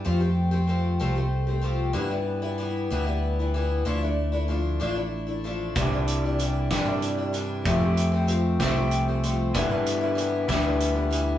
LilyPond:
<<
  \new Staff \with { instrumentName = "Twelve-string acoustic guitar" } { \time 6/8 \key f \lydian \tempo 4. = 63 <f a c' g'>16 <a c' g'>8 <a c' g'>16 <f a c' g'>8 <f a c' g'>16 <a c' g'>8 <a c' g'>16 <f a c' g'>8 | <g, d e g b e'>16 <e g b e'>8 <e g b e'>16 <e g b e'>8 <g, d e g b e'>16 <e g b e'>8 <e g b e'>16 <e g b e'>8 | <d f a d' e'>16 <a d' e'>8 <a d' e'>16 <f a d' e'>8 <d f a d' e'>16 <a d' e'>8 <a d' e'>16 <f a d' e'>8 | <c e g d' e'>16 <g d' e'>8 <g d' e'>16 <e g d' e'>8 <c e g d' e'>16 <g d' e'>8 <g d' e'>16 <e g d' e'>8 |
<f a c' g'>16 <a c' g'>8 <a c' g'>16 <f a c' g'>8 <f a c' g'>16 <a c' g'>8 <a c' g'>16 <f a c' g'>8 | <g, d e g b e'>16 <e g b e'>8 <e g b e'>16 <e g b e'>8 <g, d e g b e'>16 <e g b e'>8 <e g b e'>16 <e g b e'>8 | }
  \new Staff \with { instrumentName = "Clean electric guitar" } { \clef bass \time 6/8 \key f \lydian r2. | r2. | r2. | <c e g d' g'>4. <c e g d' g'>4. |
<f a c' g'>4. <f a c' g'>4. | <g, d e g b e'>4. <g, d e g b e'>4. | }
  \new Staff \with { instrumentName = "Fingered electric bass" } { \clef bass \time 6/8 \key f \lydian f,4. c,4. | g,4. d,4. | d,4. a,,4. | c,4. g,4. |
f,4. c,4. | g,4. d,4. | }
  \new DrumStaff \with { instrumentName = "Drums" } \drummode { \time 6/8 r4. r4. | r4. r4. | r4. r4. | <hh bd>8 hh8 hh8 <hh bd sn>8 hh8 hh8 |
<hh bd>8 hh8 hh8 <hh bd sn>8 hh8 hh8 | <hh bd>8 hh8 hh8 <hh bd sn>8 hh8 hh8 | }
>>